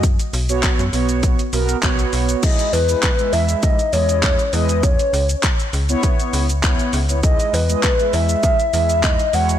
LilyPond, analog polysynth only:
\new Staff \with { instrumentName = "Analog polysynth" } { \time 4/4 \key e \major \tempo 4 = 100 r8. <b fis' cis''>8 r16 <b fis' cis''>8. r16 <b fis' ais'>8 <b fis' cis''>4 | <gis e' dis''>8 r16 <gis e' b'>8 <gis e' e''>4 r16 <gis e' dis''>8. r16 <gis e' dis''>8 | r4. r16 <b e' cis''>4 r16 <b e' cis''>8 r16 <b e' cis''>16 | <gis e' dis''>8 r16 <gis e' dis''>8 <gis e' e''>4 r16 <gis e' e''>8. r16 <gis e' cis''>8 | }